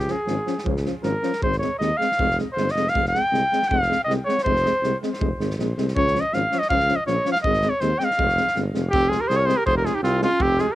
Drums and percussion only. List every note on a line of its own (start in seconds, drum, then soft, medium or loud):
0.08 snare soft
0.28 snare soft
0.47 snare soft
0.58 snare soft
0.66 kick medium
0.77 snare soft
0.86 snare soft
1.03 snare soft
1.23 snare soft
1.33 snare soft
1.43 kick medium
1.52 snare soft
1.62 snare soft
1.81 snare soft
2.01 snare soft
2.12 snare soft
2.19 kick medium
2.31 snare soft
2.38 snare soft
2.57 snare soft
2.68 snare soft
2.76 snare soft
2.88 snare soft
2.95 kick medium
3.05 snare soft
3.15 snare soft
3.34 snare soft
3.53 snare soft
3.62 snare soft
3.71 kick medium
3.82 snare soft
3.92 snare soft
4.10 snare soft
4.29 snare soft
4.38 snare soft
4.46 kick medium
4.56 snare soft
4.66 snare soft
4.84 snare soft
5.03 snare soft
5.14 snare soft
5.21 kick loud
5.40 snare soft
5.50 snare soft
5.59 snare soft
5.78 snare soft
5.88 snare soft
5.96 kick loud
6.07 snare soft
6.15 snare soft
6.33 snare soft
6.52 snare soft
6.62 snare soft
6.70 kick medium
6.80 snare soft
6.89 snare soft
7.07 snare soft
7.25 snare soft
7.35 snare soft
7.44 kick loud
7.53 snare soft
7.62 snare soft
7.80 snare soft
8.00 snare soft
8.11 snare soft
8.19 kick medium
8.29 snare soft
8.37 snare soft
8.48 snare soft
8.56 snare soft
8.75 snare soft
8.93 kick loud
9.12 snare soft
9.30 snare soft
9.49 snare soft
9.67 kick medium
9.86 snare soft
10.04 snare soft
10.22 snare soft
10.40 kick medium
10.58 snare soft